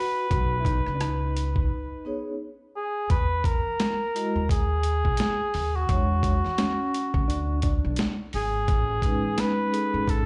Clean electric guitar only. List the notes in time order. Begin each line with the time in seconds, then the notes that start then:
Already playing: F#4
0.30 F#4
0.60 E4
0.65 D#4
0.95 D4
1.00 D#4
6.58 C#4
7.28 D4
7.63 D4